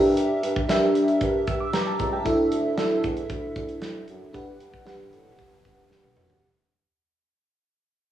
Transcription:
Already playing: G2 D4 G4 A#4 E5
0.17 closed hi-hat
0.42 G2, closed hi-hat
0.56 kick
0.68 G2 D4 G4 A#4 E5, snare, closed hi-hat
0.95 closed hi-hat
1.08 closed hi-hat
1.21 G2, kick, closed hi-hat
1.47 G2 E6, kick, closed hi-hat
1.60 D6
1.72 G2 A#5, snare, closed hi-hat
1.87 A5
1.99 C#2 A#5, kick, closed hi-hat
2.13 G5
2.25 D2 D4 E4 A4 E5, kick, closed hi-hat
2.51 D2, closed hi-hat
2.77 D2 D4 E4 A4 E5, snare, closed hi-hat
3.04 E2, kick, closed hi-hat
3.17 closed hi-hat
3.30 D2, kick, closed hi-hat
3.56 D2, kick, closed hi-hat
3.69 closed hi-hat
3.82 D2, snare, closed hi-hat
4.08 F#2, closed hi-hat
4.33 G2 D4 G4 B4 F#5, kick, closed hi-hat
4.60 G2, closed hi-hat
4.74 kick
4.85 G2 D4 G4 B4 F#5, snare, closed hi-hat
5.12 A2, closed hi-hat
5.39 G2, kick, closed hi-hat
5.65 G2, kick, closed hi-hat
5.91 G2, snare
6.04 high tom
6.17 F#2, mid tom
6.30 floor tom

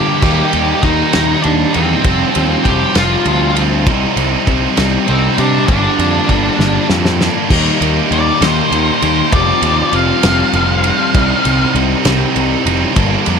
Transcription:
Already playing: G2 D3 G3 A#3 D4 G4 G5
0.22 D#2 D#3 G3 A#3 D#4, kick, crash
0.53 D#2 G3 A#3 D#4, ride
0.82 D#2 D#3 G3 A#3 D#4 D#5, kick, ride
1.13 D#2 D#3 G3 A#3 D#4, snare, ride
1.42 D#2 D#3 G3 A#3 D4 D#4 D5, ride
1.73 E2 G3 A#3 C4 D#4 C5, ride
2.04 F1 F3 G3 C4 F4, kick, ride
2.35 D#2 G3 C4 F4, ride
2.64 F1 F3 G3 C4 F4 G4 G5, kick, ride
2.95 F1 F3 G3 C4 F4 F5, snare, ride
3.25 D2 F3 G3 C4 F4, ride
3.56 G3 C4 F4, ride
3.86 C2 C3 G3 C4 D#4, kick, ride
4.17 C2 G3 C4 D#4, ride
4.46 C2 C3 G3 C4 D#4, kick, ride
4.77 C2 G3 C4 D#4, snare, ride
4.81 C3
5.07 C2 C3 G3 C4 D#4 C5, ride
5.37 C3 G3 C4 D4 D#4 D5, ride
5.66 G1 G2 D3 G3 A#3 D4 D5, kick, ride
5.98 F2 G3 A#3 D4, ride
6.29 G1 D3 G3 A#3 D4, kick, ride
6.59 G1 G2 D3 G3 A#3 D4, snare
6.89 F2 D3 G3 A#3 D4, snare
7.05 snare
7.20 G3 A#3 D4, snare
7.49 D#2 D#3 G3 A#3 D#4 G4, kick, crash
7.80 D#2 G3 A#3 D#4 G4, ride
8.11 D#2 D#3 G3 A#3 D#4 G4 D5, ride
8.41 D#2 D#3 G3 A#3 D#4 G4 C5, snare, ride
8.71 D#2 D#3 G3 A#3 D#4, ride
9.02 D#2 G3 A#3 D#4 G4, ride
9.32 F1 F3 G3 C4 F4 D5, kick, ride
9.62 D#2 G3 C4 F4, ride
9.93 F1 F3 G3 C4 F4 F5, ride
10.23 F1 F3 G3 C4 F4, snare, ride
10.53 F1 F3 G3 C4 F4, ride
10.83 G3 C4 F4, ride
11.14 C2 C3 G3 C4 D#4, kick, ride
11.45 C2 G3 C4 D#4, ride
11.75 C2 C3 G3 C4 D#4, ride
12.05 C2 C3 G3 C4 D#4, snare, ride
12.35 C2 C3 G3 C4 D#4, ride
12.66 F1 G3 C4 D#4, ride
12.96 G1 G2 D3 G3 A#3 D4, kick, ride
13.26 F2 G3 A#3 D4, ride

